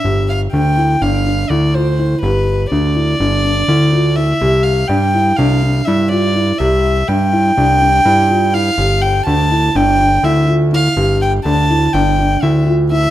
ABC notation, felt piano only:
X:1
M:9/8
L:1/8
Q:3/8=82
K:Gdor
V:1 name="Felt piano"
G2 D E D D E F E | G2 D E D D E F E | G2 D E D D E F E | G2 D E D D E F E |
G2 D E D D E F E | G2 D E D D E F E |]